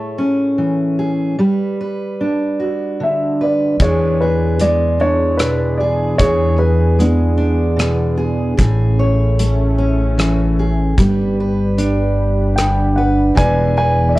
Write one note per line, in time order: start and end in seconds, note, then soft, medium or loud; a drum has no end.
0.00 1.40 A2 medium
0.00 1.34 A3 medium
0.00 0.98 G#4 soft
0.00 1.36 C#5 soft
0.18 1.35 C#4 soft
0.58 1.35 E3 medium
0.99 1.35 G#4 soft
1.39 3.79 G3 medium
1.39 1.79 B4 medium
1.81 3.40 B4 soft
2.21 3.76 D4 medium
2.60 3.75 F#4 soft
3.00 3.80 D3 soft
3.00 3.43 E5 medium
3.41 3.76 B4 soft
3.41 3.79 D5 medium
3.80 6.16 E2 medium
3.80 6.18 E3 medium
3.80 8.55 E3 medium
3.80 4.60 G#3 soft
3.80 8.55 B3 medium
3.80 8.55 D4 medium
3.80 4.99 D4 medium
3.80 4.97 G#4 medium
3.80 4.21 G#4 soft
3.80 8.56 G#4 medium
3.80 6.16 B4 medium
3.80 4.23 C#5 medium
3.80 kick medium
3.80 closed hi-hat soft
4.21 5.80 G#4 soft
4.21 4.62 B4 medium
4.59 6.98 G#3 medium
4.59 4.98 D5 medium
4.59 closed hi-hat soft
5.00 6.15 D4 soft
5.00 5.42 C#5 medium
5.38 6.15 B2 medium
5.38 5.80 B4 medium
5.38 cross-stick medium
5.38 closed hi-hat medium
5.78 6.19 G#4 soft
5.78 6.20 D5 medium
6.18 8.55 E2 medium
6.18 8.53 E3 medium
6.18 6.58 G#4 medium
6.18 6.98 G#4 medium
6.18 6.56 C#5 medium
6.18 kick medium
6.18 closed hi-hat soft
6.58 8.16 G#4 medium
6.58 7.00 B4 medium
6.99 8.54 G#3 medium
6.99 8.15 B3 soft
6.99 8.15 D4 soft
6.99 8.15 G#4 medium
6.99 closed hi-hat soft
7.38 8.53 D4 medium
7.76 8.53 B2 medium
7.76 cross-stick medium
7.76 closed hi-hat soft
8.17 8.53 G#4 medium
8.57 10.94 A1 medium
8.57 10.97 A2 medium
8.57 10.96 A3 medium
8.57 10.96 C#4 medium
8.57 10.57 G#4 medium
8.57 kick medium
8.57 closed hi-hat soft
8.99 10.93 C#5 medium
9.39 10.93 A3 medium
9.39 closed hi-hat soft
9.78 10.93 C#4 soft
10.17 10.93 E3 medium
10.17 cross-stick medium
10.17 closed hi-hat soft
10.59 10.94 G#4 soft
10.96 13.33 G1 medium
10.96 13.35 G3 medium
10.96 13.37 G3 medium
10.96 14.19 D4 medium
10.96 13.35 G4 medium
10.96 13.35 B4 medium
10.96 11.40 B4 medium
10.96 kick medium
10.96 closed hi-hat soft
11.40 12.97 B4 medium
11.78 13.38 D4 medium
11.78 closed hi-hat soft
12.56 13.35 D3 medium
12.56 12.98 G5 medium
12.56 cross-stick medium
12.56 closed hi-hat soft
12.96 13.77 B4 medium
12.96 13.38 F#5 medium
13.35 14.19 E1 medium
13.35 14.19 E3 medium
13.35 14.19 B3 medium
13.35 14.19 G#4 medium
13.35 14.19 B4 medium
13.35 14.08 D5 medium
13.35 13.76 G#5 medium
13.35 kick medium
13.35 closed hi-hat soft
13.77 14.19 B4 medium
13.77 14.11 G#5 medium
14.09 14.17 D5 medium
14.15 14.19 E5 medium